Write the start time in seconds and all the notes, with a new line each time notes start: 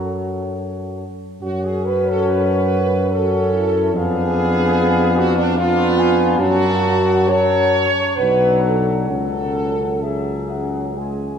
Already playing: F#2 F#3 F#4 A4 C#5
1.41 F#2 C#4 F#4 C#5
1.65 G#4
1.86 B4
2.09 A4
2.29 B4
3.11 C#4 F#4 A4 C#5
3.53 E4
3.93 F2 B3 D4 G#4 F5
5.17 F#4
5.36 D4
5.56 B3 D4 F4 F5
5.98 G#5
6.38 F#2 F#3 C#4 F#4 A5
7.29 F#3 C#4 C#5 A5
8.16 B1 F#3 D4 B4 F#5
8.62 A4
9.08 C#2 F#3 C#4 A4 F#5
10.02 F#3 C#4 G#4 E5
10.49 F#5
10.95 G#3 C#4 G#5